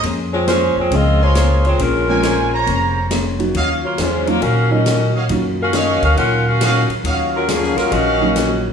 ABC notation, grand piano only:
X:1
M:4/4
L:1/8
Q:"Swing" 1/4=137
K:Ebdor
V:1 name="Grand piano"
z4 [F,A,B,CD] z3 | z [F,A,B,CD] z4 z [G,B,DEG] | z3 [G,B,DEF] z [G,B,DEF] z2 | [G,B,DEF]4- [G,B,DEF] z3 |
z4 z [G,B,DEf]3 |]